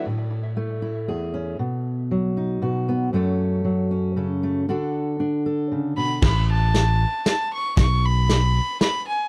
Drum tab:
CC |------|------|------|------|
HH |------|------|------|------|
SD |------|------|------|------|
BD |------|------|------|------|

CC |x-----|------|
HH |--x-x-|x-x-x-|
SD |o-o-o-|o-o-o-|
BD |o-----|o-----|